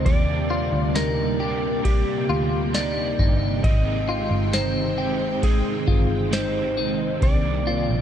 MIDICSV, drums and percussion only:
0, 0, Header, 1, 2, 480
1, 0, Start_track
1, 0, Tempo, 895522
1, 31, Time_signature, 4, 2, 24, 8
1, 4296, End_track
2, 0, Start_track
2, 0, Title_t, "Drums"
2, 31, Note_on_c, 9, 36, 112
2, 32, Note_on_c, 9, 51, 59
2, 85, Note_off_c, 9, 36, 0
2, 86, Note_off_c, 9, 51, 0
2, 512, Note_on_c, 9, 38, 118
2, 513, Note_on_c, 9, 51, 60
2, 514, Note_on_c, 9, 54, 68
2, 566, Note_off_c, 9, 38, 0
2, 566, Note_off_c, 9, 51, 0
2, 567, Note_off_c, 9, 54, 0
2, 991, Note_on_c, 9, 36, 92
2, 992, Note_on_c, 9, 51, 68
2, 1045, Note_off_c, 9, 36, 0
2, 1046, Note_off_c, 9, 51, 0
2, 1471, Note_on_c, 9, 51, 74
2, 1472, Note_on_c, 9, 38, 109
2, 1472, Note_on_c, 9, 54, 70
2, 1524, Note_off_c, 9, 51, 0
2, 1526, Note_off_c, 9, 38, 0
2, 1526, Note_off_c, 9, 54, 0
2, 1711, Note_on_c, 9, 36, 98
2, 1765, Note_off_c, 9, 36, 0
2, 1951, Note_on_c, 9, 36, 114
2, 1952, Note_on_c, 9, 51, 61
2, 2005, Note_off_c, 9, 36, 0
2, 2005, Note_off_c, 9, 51, 0
2, 2430, Note_on_c, 9, 38, 117
2, 2431, Note_on_c, 9, 51, 61
2, 2432, Note_on_c, 9, 54, 69
2, 2484, Note_off_c, 9, 38, 0
2, 2484, Note_off_c, 9, 51, 0
2, 2485, Note_off_c, 9, 54, 0
2, 2911, Note_on_c, 9, 36, 89
2, 2911, Note_on_c, 9, 51, 70
2, 2964, Note_off_c, 9, 36, 0
2, 2965, Note_off_c, 9, 51, 0
2, 3151, Note_on_c, 9, 36, 94
2, 3205, Note_off_c, 9, 36, 0
2, 3392, Note_on_c, 9, 51, 71
2, 3393, Note_on_c, 9, 38, 117
2, 3393, Note_on_c, 9, 54, 69
2, 3445, Note_off_c, 9, 51, 0
2, 3447, Note_off_c, 9, 38, 0
2, 3447, Note_off_c, 9, 54, 0
2, 3871, Note_on_c, 9, 51, 57
2, 3872, Note_on_c, 9, 36, 113
2, 3925, Note_off_c, 9, 36, 0
2, 3925, Note_off_c, 9, 51, 0
2, 4296, End_track
0, 0, End_of_file